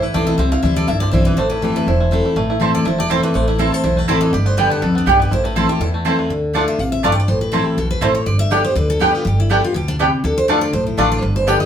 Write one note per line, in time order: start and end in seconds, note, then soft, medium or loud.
0.00 0.11 A1 medium
0.00 0.37 E2 loud
0.00 1.05 E3 medium
0.00 0.02 E4 medium
0.00 0.27 E4 medium
0.00 0.14 B4 medium
0.14 0.35 B1 medium
0.14 0.38 E3 loud
0.14 0.39 A3 medium
0.14 0.38 A3 medium
0.14 0.39 C4 loud
0.14 0.39 E4 loud
0.14 0.26 D5 medium
0.27 0.52 E4 medium
0.27 0.37 D#5 medium
0.38 0.55 C2 medium
0.38 0.86 C3 loud
0.38 1.01 C4 medium
0.38 0.51 E5 medium
0.52 0.63 E4 medium
0.52 0.62 F5 loud
0.63 0.84 D2 medium
0.63 0.87 E3 medium
0.63 0.87 G3 medium
0.63 0.88 C4 loud
0.63 0.88 E4 medium
0.63 0.88 E4 loud
0.63 0.76 E5 medium
0.76 1.11 A4 medium
0.76 0.88 D5 loud
0.88 1.09 C2 medium
0.88 1.35 G2 medium
0.88 1.14 E4 medium
0.88 1.00 E5 medium
1.00 1.38 C4 medium
1.00 1.11 D5 loud
1.11 1.34 B1 medium
1.11 1.36 E3 medium
1.11 1.37 G3 loud
1.11 1.37 C4 loud
1.11 1.51 E4 medium
1.11 1.37 E4 loud
1.11 1.25 C5 medium
1.25 1.63 E3 medium
1.25 1.36 B4 medium
1.37 1.71 A1 medium
1.37 1.85 A2 medium
1.37 2.12 A3 medium
1.37 1.49 C5 medium
1.50 1.77 E4 medium
1.50 1.61 B4 medium
1.62 1.86 E3 medium
1.62 3.03 E3 medium
1.62 1.86 A3 medium
1.62 1.87 C4 medium
1.62 1.87 E4 medium
1.62 1.75 G4 medium
1.76 1.88 E4 medium
1.76 1.88 B4 medium
1.86 2.20 E1 medium
1.86 2.34 E2 medium
1.86 2.00 E4 medium
1.86 2.25 C5 medium
2.00 2.24 E4 medium
2.11 2.35 E3 medium
2.11 2.35 A3 medium
2.11 2.36 A3 medium
2.11 2.36 C4 loud
2.11 2.36 E4 loud
2.25 2.49 E4 medium
2.36 2.70 A1 loud
2.36 2.83 A2 loud
2.36 2.72 A3 medium
2.50 2.61 E4 medium
2.60 2.84 E3 medium
2.60 2.84 A3 medium
2.60 2.70 C4 medium
2.60 2.85 C4 medium
2.60 2.71 E4 medium
2.60 2.85 E4 medium
2.60 2.84 E4 medium
2.60 2.71 C5 medium
2.60 2.71 A5 medium
2.74 3.08 A4 medium
2.74 2.86 D5 medium
2.85 3.19 E1 medium
2.85 3.32 E2 loud
2.85 3.09 E4 medium
2.85 2.99 C5 medium
2.98 3.32 A3 medium
2.98 3.10 D5 loud
3.09 3.33 E3 medium
3.09 3.33 A3 medium
3.09 3.20 C4 loud
3.09 3.34 C4 medium
3.09 3.20 E4 medium
3.09 3.45 E4 medium
3.09 3.34 E4 loud
3.09 3.20 C5 loud
3.09 3.23 C5 medium
3.09 3.20 A5 loud
3.23 3.57 E3 medium
3.23 3.35 B4 medium
3.34 3.68 A1 loud
3.34 3.81 A2 medium
3.34 3.70 A3 medium
3.34 3.47 C5 medium
3.48 3.59 E4 medium
3.48 3.58 E4 medium
3.58 3.82 E3 medium
3.58 3.83 A3 medium
3.58 3.69 C4 medium
3.58 3.83 C4 medium
3.58 3.69 E4 medium
3.58 3.83 E4 medium
3.58 3.83 E4 loud
3.58 3.74 A4 medium
3.58 3.69 C5 medium
3.58 3.69 A5 medium
3.72 4.06 A4 medium
3.72 3.82 C5 loud
3.84 4.05 B1 medium
3.84 4.31 E2 medium
3.84 4.07 E4 medium
3.84 3.98 C5 medium
3.97 4.31 A3 medium
3.97 4.08 B4 medium
4.08 4.30 A1 medium
4.08 4.32 E3 medium
4.08 4.32 A3 loud
4.08 4.18 C4 medium
4.08 4.33 C4 loud
4.08 4.33 E4 medium
4.08 4.18 E4 loud
4.08 4.33 E4 loud
4.08 4.18 C5 loud
4.08 4.20 D5 medium
4.08 4.18 A5 loud
4.21 4.33 E3 medium
4.21 4.32 D#5 medium
4.33 4.67 G1 medium
4.33 4.80 G2 loud
4.33 4.68 G4 medium
4.33 4.46 D5 medium
4.46 4.69 B3 medium
4.46 4.57 C5 medium
4.57 4.81 D3 medium
4.57 4.93 G3 medium
4.57 4.81 G3 medium
4.57 4.67 B3 medium
4.57 4.82 B3 medium
4.57 4.67 G4 medium
4.57 4.82 G4 loud
4.57 4.70 B4 medium
4.57 4.67 D5 medium
4.57 4.68 G5 loud
4.70 4.94 B3 medium
4.70 4.83 A4 medium
4.82 5.03 C2 medium
4.82 5.06 F2 loud
4.82 5.17 A4 medium
4.82 4.95 B4 loud
4.95 5.19 B3 medium
4.95 5.08 D4 medium
5.06 5.28 B1 medium
5.06 5.30 G2 medium
5.06 5.16 B3 medium
5.06 5.16 G4 medium
5.06 5.31 G4 medium
5.06 5.21 G4 medium
5.06 5.17 D5 loud
5.06 5.17 G5 loud
5.20 5.31 B3 medium
5.20 5.32 B4 medium
5.31 5.65 A1 medium
5.31 5.79 A2 medium
5.31 5.66 E4 medium
5.31 5.45 C5 medium
5.44 5.78 A3 medium
5.44 5.56 B4 medium
5.56 5.69 E3 medium
5.56 5.69 A3 medium
5.56 5.65 C4 medium
5.56 5.69 C4 loud
5.56 5.66 E4 medium
5.56 5.68 E4 loud
5.56 5.91 A4 medium
5.56 5.69 A4 medium
5.56 5.66 C5 medium
5.56 5.66 A5 medium
5.69 5.81 C4 soft
5.69 5.80 E4 medium
5.69 5.80 G4 medium
5.80 6.14 E2 medium
5.80 6.28 E2 medium
5.80 6.05 E4 medium
5.80 5.89 A4 medium
5.94 6.18 A3 medium
6.05 6.29 E3 medium
6.05 6.29 A3 medium
6.05 6.15 C4 medium
6.05 6.29 C4 loud
6.05 6.15 E4 loud
6.05 6.30 E4 medium
6.05 6.30 E4 loud
6.05 6.15 C5 loud
6.05 6.15 A5 medium
6.19 6.30 A3 medium
6.30 6.63 D2 medium
6.30 6.52 D3 medium
6.53 6.77 D3 medium
6.53 6.64 A3 medium
6.53 6.78 A3 medium
6.53 6.61 A3 medium
6.53 6.78 D4 medium
6.53 6.61 D4 medium
6.53 6.64 F4 medium
6.53 6.79 F4 medium
6.53 6.61 F4 medium
6.53 6.64 D5 medium
6.53 6.64 A5 medium
6.68 6.80 E5 medium
6.79 7.12 A1 medium
6.79 7.03 C3 medium
6.79 6.92 F5 loud
6.92 7.03 E5 loud
7.03 7.27 G2 loud
7.03 7.13 A3 medium
7.03 7.10 A3 medium
7.03 7.10 D4 medium
7.03 7.13 F4 loud
7.03 7.10 F4 medium
7.03 7.13 D5 loud
7.03 7.12 F5 medium
7.03 7.13 A5 loud
7.12 7.20 G5 loud
7.20 7.28 D5 medium
7.28 7.62 A1 loud
7.28 7.75 A2 medium
7.28 7.41 C5 medium
7.41 7.53 B4 medium
7.52 7.76 E3 medium
7.52 7.59 A3 medium
7.52 7.77 A3 medium
7.52 7.62 C4 medium
7.52 7.77 C4 medium
7.52 7.62 E4 medium
7.52 7.56 E4 medium
7.52 7.77 E4 loud
7.52 7.65 A4 medium
7.52 7.63 C5 medium
7.52 7.63 A5 medium
7.65 7.77 G4 medium
7.77 7.98 B1 medium
7.77 8.01 B2 medium
7.77 7.90 A4 medium
7.91 8.02 B4 loud
8.01 8.23 A1 medium
8.01 8.25 A2 medium
8.01 8.08 A3 medium
8.01 8.11 C4 medium
8.01 8.11 E4 medium
8.01 8.05 E4 medium
8.01 8.11 C5 loud
8.01 8.15 C5 medium
8.01 8.12 A5 medium
8.15 8.26 C#5 medium
8.26 8.60 G1 loud
8.26 8.73 G2 loud
8.26 8.39 D5 medium
8.39 8.52 E5 loud
8.50 8.63 D3 medium
8.50 8.64 G3 loud
8.50 8.61 B3 medium
8.50 8.57 B3 medium
8.50 8.64 B3 medium
8.50 8.58 D4 medium
8.50 8.61 G4 medium
8.50 8.62 G4 medium
8.50 8.58 G4 medium
8.50 8.61 D5 loud
8.50 8.64 D5 medium
8.50 8.61 G5 loud
8.64 8.76 B3 soft
8.64 8.75 G4 medium
8.64 8.76 C5 loud
8.75 9.09 D2 medium
8.75 8.98 D3 loud
8.75 8.89 B4 medium
8.90 9.01 A4 medium
8.99 9.24 D3 medium
8.99 9.24 G3 medium
8.99 9.10 B3 loud
8.99 9.07 B3 medium
8.99 9.24 B3 loud
8.99 9.07 D4 medium
8.99 9.10 G4 medium
8.99 9.15 G4 medium
8.99 9.25 G4 loud
8.99 9.07 G4 medium
8.99 9.10 D5 loud
8.99 9.11 G5 loud
9.15 9.25 F4 medium
9.25 9.59 G1 loud
9.25 9.72 G2 loud
9.25 9.39 G4 medium
9.40 9.51 E4 medium
9.49 9.62 D3 medium
9.49 9.62 G3 medium
9.49 9.59 B3 medium
9.49 9.63 B3 medium
9.49 9.56 B3 medium
9.49 9.56 D4 medium
9.49 9.63 D4 medium
9.49 9.60 G4 medium
9.49 9.57 G4 medium
9.49 9.60 D5 medium
9.49 9.60 G5 loud
9.62 9.75 B3 soft
9.62 9.75 F4 medium
9.62 9.73 G4 medium
9.74 10.08 D2 medium
9.74 9.98 B2 medium
9.74 9.88 G4 medium
9.88 9.95 D4 loud
9.99 10.23 C3 medium
9.99 10.09 B3 loud
9.99 10.05 B3 medium
9.99 10.05 D4 medium
9.99 10.09 G4 medium
9.99 10.06 G4 medium
9.99 10.09 D5 loud
9.99 10.09 G5 loud
10.24 10.57 D2 loud
10.24 10.47 D3 medium
10.24 10.37 A4 medium
10.38 10.48 C5 loud
10.48 10.72 D3 medium
10.48 10.58 A3 medium
10.48 10.72 A3 medium
10.48 10.55 A3 medium
10.48 10.72 D4 loud
10.48 10.55 D4 medium
10.48 10.58 F4 medium
10.48 10.55 F4 medium
10.48 10.73 F4 loud
10.48 10.61 B4 medium
10.48 10.58 D5 medium
10.48 10.58 A5 medium
10.61 10.73 D5 loud
10.73 10.94 B1 medium
10.73 11.20 A2 medium
10.73 10.86 C5 medium
10.87 10.98 E4 medium
10.97 11.19 A1 medium
10.97 11.21 D3 medium
10.97 11.07 A3 loud
10.97 11.04 A3 medium
10.97 11.22 A3 medium
10.97 11.04 D4 medium
10.97 11.22 D4 loud
10.97 11.08 F4 loud
10.97 11.04 F4 medium
10.97 11.22 F4 loud
10.97 11.11 A4 medium
10.97 11.08 D5 loud
10.97 11.08 A5 loud
11.12 11.22 D5 loud
11.22 11.56 G1 loud
11.22 11.66 G2 medium
11.22 11.35 B4 medium
11.36 11.48 C5 medium
11.47 11.66 D3 medium
11.47 11.66 G3 loud
11.47 11.57 B3 medium
11.47 11.53 B3 medium
11.47 11.66 B3 medium
11.47 11.53 D4 medium
11.47 11.57 G4 medium
11.47 11.53 G4 medium
11.47 11.66 G4 medium
11.47 11.60 D5 medium
11.47 11.57 D5 medium
11.47 11.57 G5 medium
11.60 11.66 D#5 loud